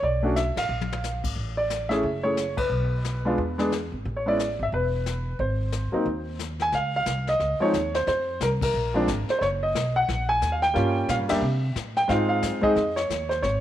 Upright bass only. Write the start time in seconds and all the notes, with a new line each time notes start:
0.03 B1
0.56 A1
0.69 A#1
1.24 G#1
1.36 A1
2.03 F#1
2.69 B1
3.38 E2
3.92 G#1
4.05 A1
4.59 G#1
4.72 E1
5.39 G#1
5.93 muted upright bass stroke
6.06 D#2
6.72 C#2
7.06 C2
7.40 C#2
7.60 muted upright bass stroke
7.73 D#2
8.07 F2
8.40 C2
8.74 A#1
9.07 G#1
9.28 muted upright bass stroke
9.41 F#1
9.75 B1
10.08 A#1
10.42 D#2
10.75 G2
11.09 A#2
11.19 G2
11.31 F2
11.42 C3
11.75 A2
12.09 G#2
12.42 F#2
12.76 F2
13.09 D#2
13.43 G#1